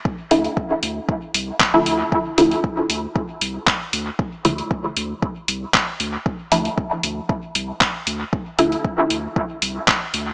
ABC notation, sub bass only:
X:1
M:4/4
L:1/8
Q:1/4=116
K:Dm
V:1 name="Sub bass" clef=bass
z D,, z D,, z C,, z D,, | z D,, z D,, z C,, z D,, | z D,, z D,, z C,, z D,, | z D,, z D,, z C,, z D,, |
z D,, z D,, z C,, z D,, |]